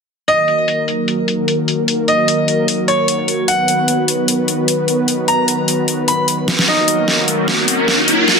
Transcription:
0.28 D#3 F#3 A#3 F#4 A#4 D#5, closed hi-hat
0.48 closed hi-hat
0.68 closed hi-hat
0.88 closed hi-hat
1.08 closed hi-hat
1.28 closed hi-hat
1.48 closed hi-hat
1.68 closed hi-hat
1.88 closed hi-hat
2.08 D#5, closed hi-hat
2.28 closed hi-hat
2.48 closed hi-hat
2.68 closed hi-hat
2.88 C#5, closed hi-hat
3.08 closed hi-hat
3.28 closed hi-hat
3.48 D#3 B3 B4 F#5, closed hi-hat
3.68 closed hi-hat
3.88 closed hi-hat
4.08 closed hi-hat
4.28 closed hi-hat
4.48 closed hi-hat
4.68 closed hi-hat
4.88 closed hi-hat
5.08 closed hi-hat
5.28 A#5, closed hi-hat
5.48 closed hi-hat
5.68 closed hi-hat
5.88 closed hi-hat
6.08 B5, closed hi-hat
6.28 closed hi-hat
6.48 snare, closed hi-hat
6.59 snare
6.68 D#3 F#3 A#3 D#4 F#4 A#4 D#5, snare, riser
6.88 closed hi-hat
7.08 snare
7.28 closed hi-hat
7.48 snare
7.68 closed hi-hat
7.88 snare
8.08 closed hi-hat
8.28 snare

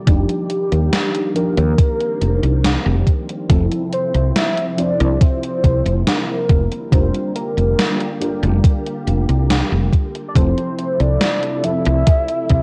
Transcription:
Already playing: D#3 G3 A#3 D5
0.06 F1 F3 D4 D#4 G4, kick, closed hi-hat
0.29 closed hi-hat
0.50 closed hi-hat
0.72 D#2, closed hi-hat
0.93 snare, closed hi-hat
1.15 closed hi-hat
1.34 F3 C4 D4 D#4 G4 A#4, closed hi-hat
1.57 D#2, closed hi-hat
1.78 kick, closed hi-hat
2.01 closed hi-hat
2.21 F1, closed hi-hat
2.43 C2, closed hi-hat
2.64 snare, closed hi-hat
2.86 F1
3.07 kick, closed hi-hat
3.29 closed hi-hat
3.49 F1 C3 F3 C4 E4 A4, kick, closed hi-hat
3.72 closed hi-hat
3.93 C5, closed hi-hat
4.14 C2, closed hi-hat
4.36 E5, snare, closed hi-hat
4.57 closed hi-hat
4.72 E5
4.77 F3 C4 E4 C5 D5, closed hi-hat
5.00 C2, closed hi-hat
5.21 C5, kick, closed hi-hat
5.43 closed hi-hat
5.64 C2, kick, closed hi-hat
5.86 F1, closed hi-hat
6.07 A#4, snare, closed hi-hat
6.49 F1 D3 G3 A#3 G4, kick, closed hi-hat
6.72 closed hi-hat
6.91 F1 G3 D4 F4 A#4 C5, kick, closed hi-hat
7.14 closed hi-hat
7.36 A#4, closed hi-hat
7.57 F1, closed hi-hat
7.79 snare, closed hi-hat
8.00 closed hi-hat
8.20 G3 D4 F4 A#4, closed hi-hat
8.43 F1, closed hi-hat
8.64 kick, closed hi-hat
8.86 closed hi-hat
9.07 F1, closed hi-hat
9.29 C2, closed hi-hat
9.50 snare, closed hi-hat
9.72 F1
9.93 kick, closed hi-hat
10.15 closed hi-hat
10.28 D5
10.34 F1 C3 F3 A3 C4 E4 A4 C5, kick, closed hi-hat
10.58 closed hi-hat
10.79 closed hi-hat
11.00 C2 D5, closed hi-hat
11.21 snare, closed hi-hat
11.43 closed hi-hat
11.63 F3 C4 E4 A4 E5, closed hi-hat
11.85 C2, closed hi-hat
12.07 kick, closed hi-hat
12.28 closed hi-hat
12.49 C2, kick, closed hi-hat

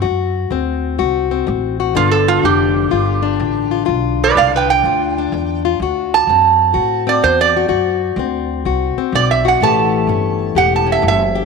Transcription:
0.02 D2 F#2 F#4
0.51 D2 C4
0.98 C2 D2 F#4
1.31 C4
1.47 A1 D2
1.80 F#4
1.95 G1 G2 D3 B3 D4 F4
2.11 A4
2.28 F4
2.43 F1 G2 D4 G4
2.91 G1 G2 F4
3.22 D4
3.40 A1 G2
3.71 F4
3.85 B1 G2 F4
4.24 B4 D5
4.35 C2 G2 D4 D5 F5
4.56 B4 G5
4.70 G5
4.83 D2 G2 F4
5.18 D4
5.32 E2 G2
5.65 F4
5.80 D2 F#4
6.14 A5
6.27 D2 F#2 C4
6.73 D2 A2 F#4
7.07 C4 D5
7.23 D2 E2 C5
7.41 D5
7.57 F#4
7.68 D2 F#2 F#4
8.16 D2 C4
8.65 C2 D2 F#4
8.96 C4, muted upright bass stroke
9.12 B1 D2 D5
9.31 E5
9.45 F#4 F#5
9.60 A1 A2 E3 A3 C#4 A5
9.65 G4
10.07 G1 A2 C#4
10.55 E1 A2 G4 F#5
10.76 A5
10.87 C#4
10.92 E5
11.02 F#1 A2
11.08 E5
11.35 G4

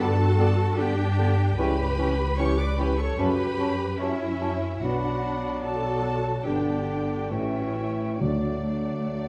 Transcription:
Already playing: D4 F#4
0.00 G2 D3 G3 B3 A4 D5 A5
0.37 D3 B3 D5 G5
0.76 D3 B3 D4 G4 D5 G5
1.17 D3 B3 D5 G5
1.56 C#2 C#3 E3 G3 C#4 E4 G4 B4 C#5 G5 B5
1.98 E3 C#4 C#5 G5
2.37 E3 C#4 G4 C#5 G5 C#6
2.58 B4 D5 D6
2.75 C#4 G4 B4 C#5 G5 B5
2.80 E3
2.97 A4 C#5 C#6
3.16 F#2 C#3 F#3 A3 C#4 F#4 G4 B4 C#5 A5 B5
3.58 F#3 C#4 C#5 A5
3.99 F#3 C#4 E4 C#5 E5 A5
4.40 F#3 C#4 C#5 A5
4.82 B1 B2 F#3 B3 D4 F#4 D5 F#5 B5
5.63 F#4 A4 A5
6.43 G1 G2 D3 B3 D4 G4 D5 G5
7.29 A1 A2 E3 A3 C#4 E4 G4 C#5 E5 G5
7.39 F#4
7.48 E4
7.57 F#4
7.65 E4
7.75 F#4
7.83 E4
8.20 D2 A2 D3 F#3 A3 D4 F#4 D5 F#5
8.24 A3

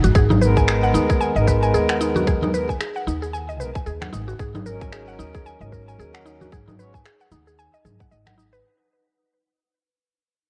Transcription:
0.04 G#1 F#4, closed hi-hat, high conga, low conga, shaker
0.15 G#1 G#4, kick, shaker
0.30 D#4, low conga, shaker
0.39 G#3 B3 D#4 A#4 B4, shaker
0.57 G#5, kick, shaker
0.68 G#4, finger snap, shaker
0.83 F#5, shaker
0.94 D#2 D#4, shaker
1.09 G#4, kick, shaker
1.21 G#5, shaker
1.35 G#1 G#3 B3 D#4 D#5, shaker
1.39 A#4
1.47 B4, kick, shaker
1.63 G#5, shaker
1.74 D#2 G#4, shaker
1.89 F#5, finger snap, shaker
2.01 D#4, shaker
2.16 F#4, low conga, shaker
2.27 G#4, kick, shaker
2.42 D#4, low conga, shaker
2.53 G#3 B3 D#4 A#4 B4, shaker
2.69 G#5, kick, shaker
2.80 G#4, finger snap, shaker
2.96 F#5, shaker
3.07 D#2 D#4, shaker
3.22 G#4, shaker
3.33 G#5, shaker
3.49 D#5, shaker
3.59 B1 G#3 B3 D#4 A#4 B4, shaker
3.75 G#5, kick, shaker
3.86 D#2 G#4, shaker
4.02 F#5, finger snap, low conga, shaker
4.13 G#1 D#4, shaker
4.28 F#4, shaker
4.39 G#1 G#4, kick, shaker
4.55 D#4, low conga, shaker
4.65 F#3 C#4 D#4 A#4, shaker
4.82 G#5, kick, shaker
4.93 G#4, finger snap, shaker
5.08 F#5, shaker
5.19 D#2 D#4, shaker
5.35 G#4, kick, shaker
5.46 G#5, shaker
5.59 G#1 F#3 C#4 D#4 A#4 D#5, shaker
5.72 A#4, kick, shaker
5.88 G#5, shaker
5.99 D#2 G#4, shaker
6.14 F#5, finger snap, shaker
6.26 D#4, shaker
6.41 F#4, low conga, shaker
6.52 G#1 G#4, kick, shaker
6.68 D#4, low conga, shaker
6.78 G#3 C#4 F#4 B4 C#5, shaker
6.94 G#5, kick, shaker
7.05 G#4, finger snap, shaker
7.21 F#5, shaker
7.31 D#2 D#4, shaker
7.47 G#4, shaker
7.59 G#5, shaker
7.74 D#5, shaker
7.85 G#1 G#4, low conga, shaker
8.00 F#5, kick, shaker
8.11 G#1 D#5, shaker
8.27 F#5, finger snap, low conga, shaker
8.38 D#4, shaker
8.53 B4, shaker

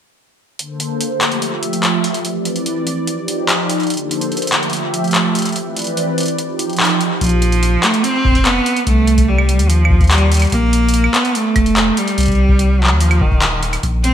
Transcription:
0.59 D3 A#3 A4 C5, closed hi-hat
0.80 closed hi-hat
1.01 closed hi-hat
1.21 F3 A3 G4 E5, clap, closed hi-hat
1.32 closed hi-hat
1.42 closed hi-hat
1.63 closed hi-hat
1.73 closed hi-hat
1.83 clap, closed hi-hat
2.04 closed hi-hat
2.14 closed hi-hat
2.25 E3 C4 B4 D5, closed hi-hat
2.45 closed hi-hat
2.56 closed hi-hat
2.66 closed hi-hat
2.87 closed hi-hat
3.07 F3 D#4 G4, closed hi-hat
3.28 closed hi-hat
3.49 clap, closed hi-hat
3.70 closed hi-hat
3.80 closed hi-hat
3.83 closed hi-hat
3.87 A#3 A4 C5, closed hi-hat
3.90 D3, closed hi-hat
3.94 closed hi-hat
3.97 closed hi-hat
4.11 closed hi-hat
4.21 closed hi-hat
4.32 closed hi-hat
4.37 closed hi-hat
4.42 closed hi-hat
4.47 closed hi-hat
4.52 F3 A3 G4 E5, clap, closed hi-hat
4.63 closed hi-hat
4.70 closed hi-hat
4.73 closed hi-hat
4.77 closed hi-hat
4.94 closed hi-hat
5.04 closed hi-hat
5.08 closed hi-hat
5.11 clap, closed hi-hat
5.14 closed hi-hat
5.35 closed hi-hat
5.39 closed hi-hat
5.42 closed hi-hat
5.45 closed hi-hat
5.49 closed hi-hat
5.52 E3 C4, closed hi-hat
5.56 B4 D5, closed hi-hat
5.77 closed hi-hat
5.79 closed hi-hat
5.82 closed hi-hat
5.84 closed hi-hat
5.87 closed hi-hat
5.97 closed hi-hat
6.18 closed hi-hat
6.20 closed hi-hat
6.23 closed hi-hat
6.26 closed hi-hat
6.28 closed hi-hat
6.38 F3 D#4 G4, closed hi-hat
6.59 closed hi-hat
6.70 closed hi-hat
6.73 closed hi-hat
6.76 clap, closed hi-hat
6.80 clap, closed hi-hat
6.83 clap, closed hi-hat
6.85 closed hi-hat
6.87 clap, closed hi-hat
7.01 closed hi-hat
7.21 A#1 F3, kick, closed hi-hat
7.24 closed hi-hat
7.26 closed hi-hat
7.29 closed hi-hat
7.42 closed hi-hat
7.52 closed hi-hat
7.63 closed hi-hat
7.83 A3, clap, closed hi-hat
7.94 closed hi-hat
8.04 C4, closed hi-hat
8.25 F1, kick
8.28 kick
8.32 kick, closed hi-hat
8.35 kick
8.39 kick
8.42 B3, kick, clap, closed hi-hat
8.66 closed hi-hat
8.76 closed hi-hat
8.87 C2 A3, kick, closed hi-hat
9.07 closed hi-hat
9.18 kick, closed hi-hat
9.28 G3
9.38 claves
9.49 closed hi-hat
9.59 D#2, closed hi-hat
9.70 F3, closed hi-hat
9.85 claves
9.90 kick
10.01 kick, closed hi-hat
10.04 closed hi-hat
10.07 clap, closed hi-hat
10.11 G3, closed hi-hat
10.14 closed hi-hat
10.18 closed hi-hat
10.32 closed hi-hat
10.34 closed hi-hat
10.37 closed hi-hat
10.39 closed hi-hat
10.42 closed hi-hat, claves
10.45 closed hi-hat
10.47 closed hi-hat
10.50 closed hi-hat
10.52 A#1 A#3, kick, closed hi-hat
10.73 closed hi-hat
10.89 closed hi-hat
10.94 closed hi-hat
11.04 claves
11.14 B3, clap, closed hi-hat
11.25 closed hi-hat
11.35 A3, closed hi-hat
11.56 F1, kick, closed hi-hat, claves
11.66 closed hi-hat
11.77 clap, closed hi-hat
11.97 G3, closed hi-hat
12.08 closed hi-hat
12.18 C2, closed hi-hat
12.20 closed hi-hat
12.23 closed hi-hat
12.26 kick, closed hi-hat
12.28 closed hi-hat
12.35 closed hi-hat
12.49 kick
12.59 closed hi-hat
12.80 F#3, clap
12.87 D#2, clap
13.01 F3, closed hi-hat
13.11 closed hi-hat, claves
13.21 D#1 D#3, kick
13.32 kick
13.42 clap, closed hi-hat
13.63 closed hi-hat
13.73 closed hi-hat, claves
13.83 A#1, kick, closed hi-hat
14.04 C4, closed hi-hat

